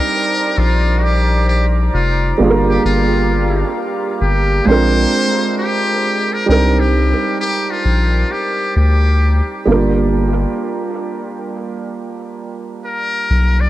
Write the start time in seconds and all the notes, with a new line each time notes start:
Already playing: G3 C4 D4 D#4 A#4 C5 D5 A#5 D6
0.57 A#1 F4
0.98 F#4
1.03 G4
1.49 G4
1.94 F1 F4
2.38 G1 G3 A#3 D4 G4 F5
2.42 F4 G#4
2.50 A#4
2.69 G4
2.85 G1 F4
4.21 G1 G4
4.65 A#1 G#3 C4 D4 C5
4.70 F4 A#4
5.58 G4
6.33 A#4
6.46 C2 G3 C4 D4 A#4
6.50 D#4 A#4
6.80 G4
7.41 G4
7.70 F4
7.85 A#1
8.31 G4
8.76 D2 G4
9.66 G1 G3 A#3 D4
9.70 F4 A#4
12.85 A#4
13.30 B1
13.60 D5